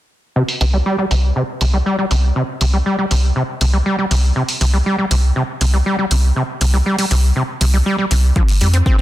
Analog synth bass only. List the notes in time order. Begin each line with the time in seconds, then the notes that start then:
0.61 C2
1.11 C2
1.61 C2
2.11 C2
2.61 C2
3.11 C2
3.61 C2
4.11 C2
4.61 C2
5.11 C2
5.61 C2
6.11 C2
6.61 C2
7.11 C2
7.61 C2
8.11 C2
8.61 F2